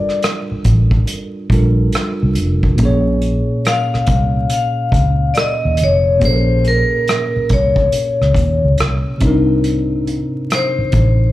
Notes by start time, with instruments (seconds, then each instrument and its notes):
Already playing: tine electric piano G3 D4 F4 A4 A#4, vibraphone D5
0.09 cross-stick
0.22 cross-stick, closed hi-hat
0.52 muted fingered electric bass stroke
0.64 fingered electric bass A1, kick, closed hi-hat
0.91 kick
1.07 closed hi-hat
1.49 fingered electric bass A#1, tine electric piano G3 D4 F4 A4, kick, closed hi-hat
1.54 tine electric piano A#4
1.92 cross-stick, closed hi-hat
2.23 fingered electric bass C2
2.35 fingered electric bass F1, closed hi-hat
2.63 kick
2.75 tine electric piano A#2 A#3, kick, closed hi-hat
2.80 fingered electric bass A#1, tine electric piano C#4 G#4
2.85 tine electric piano C#5
3.22 closed hi-hat
3.65 vibraphone F5, cross-stick, closed hi-hat
3.94 muted fingered electric bass stroke, cross-stick
4.06 fingered electric bass C2, kick, closed hi-hat
4.50 vibraphone F5, closed hi-hat
4.92 fingered electric bass C#2, kick, closed hi-hat
5.34 vibraphone D5, cross-stick, closed hi-hat
5.40 vibraphone D#5
5.65 fingered electric bass D#2
5.77 fingered electric bass F1, closed hi-hat
5.84 vibraphone C#5
6.17 tine electric piano A#2 A#3, closed hi-hat
6.22 fingered electric bass A#1, tine electric piano C#4 G#4, vibraphone C5, kick
6.27 tine electric piano A4
6.33 tine electric piano A#4
6.64 vibraphone A#4, closed hi-hat
7.08 cross-stick, closed hi-hat
7.36 muted fingered electric bass stroke
7.49 fingered electric bass C2, vibraphone C#5, kick, closed hi-hat
7.76 kick
7.92 closed hi-hat
8.21 fingered electric bass C#2, cross-stick
8.34 fingered electric bass D#2, kick, closed hi-hat
8.64 fingered electric bass C#2
8.78 fingered electric bass C2, cross-stick, closed hi-hat
9.18 tine electric piano C3 C4, kick, closed hi-hat
9.23 fingered electric bass C2, tine electric piano D4 D#4
9.27 tine electric piano A#4
9.64 closed hi-hat
10.07 closed hi-hat
10.50 cross-stick, closed hi-hat
10.55 vibraphone C5
10.79 muted fingered electric bass stroke
10.92 fingered electric bass A1, kick, closed hi-hat